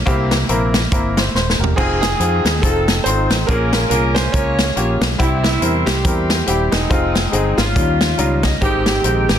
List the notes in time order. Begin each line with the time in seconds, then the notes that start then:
0.06 C2 C3 A#3 C4 E4 G4, kick, closed hi-hat
0.31 snare, closed hi-hat
0.49 A#1 A#3 C4 E4 A#4, closed hi-hat
0.74 snare, closed hi-hat
0.92 G1 A#3 C4 E4 A#4, kick, closed hi-hat
1.17 C5 E5, snare, closed hi-hat
1.34 D#1 C5, snare
1.50 snare
1.59 E1 G4 A#4
1.64 floor tom
1.76 F1 C4 D#4 F4 G#4, kick, crash
2.01 C4 D#4 G#4, snare, closed hi-hat
2.20 F2 C4 D#4 F4 G#4, closed hi-hat
2.45 D#2, snare, closed hi-hat
2.62 F1 C4 D#4 F4 A4, kick, closed hi-hat
2.88 snare, closed hi-hat
3.04 G#1 C4 D#4 F4 A4 C5, closed hi-hat
3.30 A1, snare, closed hi-hat
3.47 A#1 A#2 A#3 C#4 F4 G#4 A#4, kick, closed hi-hat
3.73 snare, closed hi-hat
3.90 C2 A#3 C#4 F4 G#4 A#4, closed hi-hat
4.15 C5, snare, closed hi-hat
4.32 C#2 A#3 C#4 F4 G#4 A#4 C#5, kick, closed hi-hat
4.59 snare, closed hi-hat
4.76 A#1 A#3 C#4 F4 G4, closed hi-hat
5.01 B1, snare, closed hi-hat
5.18 C2 C3 G3 C4 E4 G4, kick, closed hi-hat
5.43 G3 C4 E4, snare, closed hi-hat
5.61 E2 G3 C4 E4 A#4, closed hi-hat
5.86 C2 G4, snare, closed hi-hat
6.04 E2 G3 C4 E4 G4 A#4, kick, closed hi-hat
6.30 snare, closed hi-hat
6.47 D#1 G3 C4 E4 G4, closed hi-hat
6.72 E1 G#3 C4 D#4, snare, closed hi-hat
6.90 F1 G#3 C4 D#4 F4, kick, closed hi-hat
7.15 snare, closed hi-hat
7.32 G1 G#3 C4 D#4 G#4, closed hi-hat
7.57 G#1 A#3 C#4 F4, snare, closed hi-hat
7.75 D#2 D#3 G3 C#4 D#4 F4, kick, closed hi-hat
8.01 snare, closed hi-hat
8.18 C#2 G3 C#4 D#4 F4 A#5, closed hi-hat
8.43 D#5, kick, snare, closed hi-hat
8.61 G#1 G#2 D#3 G#3 B3 C4 D#4 G4 G5, kick, closed hi-hat
8.67 C4
8.86 C4 D#4 G4, snare, closed hi-hat
9.04 A#1 G#3 C4 D#4 G4, closed hi-hat
9.29 G#1 G4, snare, closed hi-hat